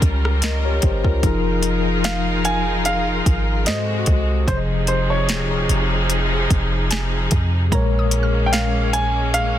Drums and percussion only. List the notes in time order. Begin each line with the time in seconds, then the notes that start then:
0.02 kick, closed hi-hat
0.25 cross-stick
0.42 snare, closed hi-hat
0.82 kick, closed hi-hat
1.04 kick
1.23 kick, closed hi-hat
1.63 closed hi-hat
2.04 snare, closed hi-hat
2.45 closed hi-hat
2.85 closed hi-hat
3.26 kick, closed hi-hat
3.66 snare, closed hi-hat
4.06 kick, closed hi-hat
4.48 kick, closed hi-hat
4.87 closed hi-hat
5.29 snare, closed hi-hat
5.69 closed hi-hat
6.10 closed hi-hat
6.51 kick, closed hi-hat
6.91 snare, closed hi-hat
7.31 kick, closed hi-hat
7.72 kick, closed hi-hat
8.11 closed hi-hat
8.53 snare, closed hi-hat
8.93 closed hi-hat
9.34 closed hi-hat